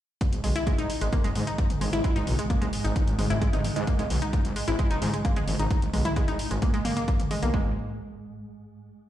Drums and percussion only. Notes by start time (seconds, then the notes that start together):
0.21 kick, closed hi-hat
0.33 closed hi-hat
0.44 open hi-hat, mid tom
0.56 closed hi-hat
0.67 kick, closed hi-hat
0.78 closed hi-hat
0.90 open hi-hat
1.01 closed hi-hat
1.13 kick, closed hi-hat
1.24 closed hi-hat
1.35 open hi-hat, mid tom
1.47 closed hi-hat
1.58 kick, closed hi-hat
1.70 closed hi-hat, mid tom
1.81 open hi-hat, mid tom
1.93 closed hi-hat
2.04 kick, closed hi-hat
2.16 closed hi-hat
2.27 open hi-hat, mid tom
2.39 closed hi-hat
2.50 kick, closed hi-hat
2.62 closed hi-hat
2.73 open hi-hat
2.85 closed hi-hat
2.96 kick, closed hi-hat
3.08 closed hi-hat
3.19 open hi-hat, mid tom
3.30 closed hi-hat
3.42 kick, closed hi-hat
3.53 closed hi-hat, mid tom
3.64 open hi-hat, mid tom
3.76 closed hi-hat
3.87 kick, closed hi-hat
3.99 closed hi-hat
4.10 open hi-hat, mid tom
4.22 closed hi-hat
4.33 kick, closed hi-hat
4.45 closed hi-hat
4.56 open hi-hat
4.68 closed hi-hat
4.79 kick, closed hi-hat
4.91 closed hi-hat
5.02 open hi-hat, mid tom
5.14 closed hi-hat
5.25 kick, closed hi-hat
5.36 closed hi-hat, mid tom
5.48 open hi-hat, mid tom
5.59 closed hi-hat
5.71 kick, closed hi-hat
5.82 closed hi-hat
5.94 open hi-hat, mid tom
6.05 closed hi-hat, mid tom
6.16 kick, closed hi-hat
6.28 closed hi-hat
6.39 open hi-hat
6.51 closed hi-hat
6.62 kick, closed hi-hat
6.74 closed hi-hat
6.85 open hi-hat, mid tom
6.97 closed hi-hat
7.08 kick, closed hi-hat
7.20 closed hi-hat, mid tom
7.31 open hi-hat, mid tom
7.43 closed hi-hat
7.54 kick